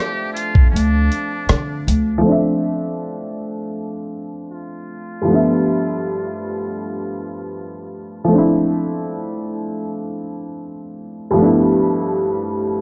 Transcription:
0, 0, Header, 1, 5, 480
1, 0, Start_track
1, 0, Tempo, 759494
1, 1416, Time_signature, 4, 2, 24, 8
1, 8098, End_track
2, 0, Start_track
2, 0, Title_t, "Muted trumpet"
2, 0, Program_c, 0, 59
2, 0, Note_on_c, 0, 67, 119
2, 204, Note_off_c, 0, 67, 0
2, 208, Note_on_c, 0, 65, 97
2, 435, Note_off_c, 0, 65, 0
2, 447, Note_on_c, 0, 62, 88
2, 1146, Note_off_c, 0, 62, 0
2, 2853, Note_on_c, 0, 65, 108
2, 4989, Note_off_c, 0, 65, 0
2, 8098, End_track
3, 0, Start_track
3, 0, Title_t, "Upright piano"
3, 0, Program_c, 1, 0
3, 0, Control_c, 1, 64, 127
3, 0, Note_on_c, 1, 53, 59
3, 0, Note_on_c, 1, 57, 53
3, 0, Note_on_c, 1, 60, 58
3, 0, Note_on_c, 1, 62, 57
3, 0, Note_on_c, 1, 76, 67
3, 1367, Note_off_c, 1, 53, 0
3, 1377, Note_on_c, 1, 53, 53
3, 1382, Note_off_c, 1, 57, 0
3, 1392, Note_off_c, 1, 60, 0
3, 1397, Note_on_c, 1, 57, 51
3, 1403, Note_off_c, 1, 62, 0
3, 1413, Note_off_c, 1, 76, 0
3, 1421, Note_on_c, 1, 60, 53
3, 1424, Control_c, 1, 64, 0
3, 1441, Note_on_c, 1, 62, 62
3, 1463, Note_on_c, 1, 76, 69
3, 1545, Control_c, 1, 64, 127
3, 3291, Note_off_c, 1, 53, 0
3, 3297, Note_on_c, 1, 43, 53
3, 3301, Note_off_c, 1, 57, 0
3, 3313, Note_off_c, 1, 60, 0
3, 3315, Note_on_c, 1, 53, 46
3, 3323, Note_off_c, 1, 62, 0
3, 3333, Note_on_c, 1, 57, 42
3, 3334, Note_off_c, 1, 76, 0
3, 3342, Control_c, 1, 64, 0
3, 3348, Note_on_c, 1, 59, 48
3, 3366, Note_on_c, 1, 62, 43
3, 3382, Note_on_c, 1, 76, 68
3, 3457, Control_c, 1, 64, 127
3, 5201, Note_off_c, 1, 53, 0
3, 5210, Note_on_c, 1, 53, 65
3, 5211, Note_off_c, 1, 43, 0
3, 5224, Note_off_c, 1, 57, 0
3, 5233, Note_on_c, 1, 57, 57
3, 5237, Note_off_c, 1, 59, 0
3, 5246, Note_off_c, 1, 62, 0
3, 5254, Note_off_c, 1, 76, 0
3, 5257, Note_on_c, 1, 60, 54
3, 5263, Control_c, 1, 64, 0
3, 5275, Note_on_c, 1, 62, 60
3, 5297, Note_on_c, 1, 64, 76
3, 5361, Control_c, 1, 64, 127
3, 7128, Note_off_c, 1, 53, 0
3, 7139, Note_off_c, 1, 57, 0
3, 7145, Note_on_c, 1, 43, 66
3, 7151, Note_off_c, 1, 60, 0
3, 7160, Note_off_c, 1, 62, 0
3, 7163, Note_on_c, 1, 53, 60
3, 7171, Note_off_c, 1, 64, 0
3, 7179, Note_on_c, 1, 57, 61
3, 7185, Control_c, 1, 64, 0
3, 7197, Note_on_c, 1, 59, 52
3, 7212, Note_on_c, 1, 62, 56
3, 7230, Note_on_c, 1, 64, 71
3, 7304, Control_c, 1, 64, 127
3, 8098, Note_off_c, 1, 43, 0
3, 8098, Note_off_c, 1, 53, 0
3, 8098, Note_off_c, 1, 57, 0
3, 8098, Note_off_c, 1, 59, 0
3, 8098, Note_off_c, 1, 62, 0
3, 8098, Note_off_c, 1, 64, 0
3, 8098, End_track
4, 0, Start_track
4, 0, Title_t, "Upright bass"
4, 0, Program_c, 2, 32
4, 463, Note_on_c, 2, 38, 71
4, 679, Note_off_c, 2, 38, 0
4, 945, Note_on_c, 2, 50, 89
4, 1160, Note_off_c, 2, 50, 0
4, 1183, Note_on_c, 2, 38, 74
4, 1399, Note_off_c, 2, 38, 0
4, 8098, End_track
5, 0, Start_track
5, 0, Title_t, "Drums"
5, 231, Note_on_c, 9, 42, 59
5, 294, Note_off_c, 9, 42, 0
5, 348, Note_on_c, 9, 36, 84
5, 411, Note_off_c, 9, 36, 0
5, 482, Note_on_c, 9, 42, 70
5, 546, Note_off_c, 9, 42, 0
5, 706, Note_on_c, 9, 42, 53
5, 769, Note_off_c, 9, 42, 0
5, 941, Note_on_c, 9, 42, 63
5, 944, Note_on_c, 9, 37, 104
5, 1004, Note_off_c, 9, 42, 0
5, 1007, Note_off_c, 9, 37, 0
5, 1189, Note_on_c, 9, 42, 81
5, 1252, Note_off_c, 9, 42, 0
5, 8098, End_track
0, 0, End_of_file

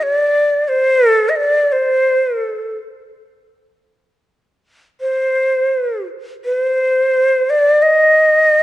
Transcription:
0, 0, Header, 1, 2, 480
1, 0, Start_track
1, 0, Key_signature, -3, "minor"
1, 0, Tempo, 500000
1, 8284, End_track
2, 0, Start_track
2, 0, Title_t, "Shakuhachi"
2, 0, Program_c, 0, 77
2, 28, Note_on_c, 0, 73, 83
2, 133, Note_off_c, 0, 73, 0
2, 133, Note_on_c, 0, 74, 83
2, 656, Note_on_c, 0, 72, 77
2, 670, Note_off_c, 0, 74, 0
2, 1049, Note_off_c, 0, 72, 0
2, 1049, Note_on_c, 0, 69, 77
2, 1238, Note_on_c, 0, 75, 46
2, 1252, Note_off_c, 0, 69, 0
2, 1305, Note_on_c, 0, 74, 70
2, 1320, Note_off_c, 0, 75, 0
2, 1653, Note_on_c, 0, 72, 69
2, 1668, Note_off_c, 0, 74, 0
2, 2335, Note_off_c, 0, 72, 0
2, 2335, Note_on_c, 0, 69, 69
2, 2675, Note_off_c, 0, 69, 0
2, 4807, Note_on_c, 0, 72, 70
2, 5794, Note_off_c, 0, 72, 0
2, 6192, Note_on_c, 0, 71, 74
2, 6307, Note_off_c, 0, 71, 0
2, 6307, Note_on_c, 0, 72, 74
2, 7199, Note_on_c, 0, 74, 78
2, 7214, Note_off_c, 0, 72, 0
2, 7508, Note_on_c, 0, 75, 75
2, 7522, Note_off_c, 0, 74, 0
2, 8284, Note_off_c, 0, 75, 0
2, 8284, End_track
0, 0, End_of_file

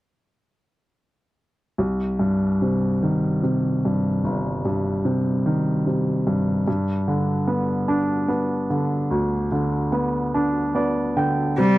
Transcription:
0, 0, Header, 1, 3, 480
1, 0, Start_track
1, 0, Key_signature, -3, "minor"
1, 0, Tempo, 815217
1, 1057, Time_signature, 6, 3, 24, 8
1, 6937, End_track
2, 0, Start_track
2, 0, Title_t, "Cello"
2, 0, Program_c, 0, 42
2, 6829, Note_on_c, 0, 55, 69
2, 6937, Note_off_c, 0, 55, 0
2, 6937, End_track
3, 0, Start_track
3, 0, Title_t, "Grand piano"
3, 0, Program_c, 1, 0
3, 1050, Note_on_c, 1, 36, 38
3, 1166, Control_c, 1, 64, 127
3, 1292, Note_on_c, 1, 43, 36
3, 1542, Note_on_c, 1, 48, 32
3, 1782, Note_on_c, 1, 51, 36
3, 2011, Note_off_c, 1, 48, 0
3, 2020, Note_on_c, 1, 48, 34
3, 2233, Note_off_c, 1, 43, 0
3, 2268, Note_on_c, 1, 43, 36
3, 2471, Note_off_c, 1, 36, 0
3, 2498, Note_on_c, 1, 31, 42
3, 2714, Note_off_c, 1, 51, 0
3, 2731, Note_off_c, 1, 43, 0
3, 2740, Note_on_c, 1, 43, 35
3, 2952, Note_off_c, 1, 48, 0
3, 2973, Note_on_c, 1, 48, 37
3, 3214, Note_on_c, 1, 51, 39
3, 3446, Note_off_c, 1, 48, 0
3, 3455, Note_on_c, 1, 48, 36
3, 3669, Note_off_c, 1, 43, 0
3, 3691, Note_on_c, 1, 43, 35
3, 3906, Note_off_c, 1, 31, 0
3, 3908, Note_off_c, 1, 51, 0
3, 3916, Note_off_c, 1, 48, 0
3, 3922, Note_off_c, 1, 43, 0
3, 3930, Note_on_c, 1, 43, 46
3, 3937, Control_c, 1, 64, 0
3, 4038, Control_c, 1, 64, 127
3, 4167, Note_on_c, 1, 50, 40
3, 4401, Note_on_c, 1, 59, 41
3, 4641, Note_on_c, 1, 62, 43
3, 4869, Note_off_c, 1, 59, 0
3, 4877, Note_on_c, 1, 59, 38
3, 5099, Note_off_c, 1, 50, 0
3, 5124, Note_on_c, 1, 50, 39
3, 5339, Note_off_c, 1, 43, 0
3, 5362, Note_on_c, 1, 38, 41
3, 5576, Note_off_c, 1, 62, 0
3, 5596, Note_off_c, 1, 50, 0
3, 5605, Note_on_c, 1, 50, 39
3, 5817, Note_off_c, 1, 59, 0
3, 5843, Note_on_c, 1, 59, 38
3, 6091, Note_on_c, 1, 62, 46
3, 6319, Note_off_c, 1, 59, 0
3, 6328, Note_on_c, 1, 59, 36
3, 6332, Note_on_c, 1, 74, 43
3, 6551, Note_off_c, 1, 50, 0
3, 6557, Note_off_c, 1, 74, 0
3, 6574, Note_on_c, 1, 50, 41
3, 6576, Note_on_c, 1, 79, 48
3, 6791, Note_off_c, 1, 38, 0
3, 6795, Note_off_c, 1, 62, 0
3, 6799, Note_off_c, 1, 59, 0
3, 6800, Note_off_c, 1, 79, 0
3, 6808, Note_off_c, 1, 50, 0
3, 6818, Note_on_c, 1, 48, 45
3, 6821, Control_c, 1, 64, 0
3, 6919, Control_c, 1, 64, 127
3, 6937, Note_off_c, 1, 48, 0
3, 6937, End_track
0, 0, End_of_file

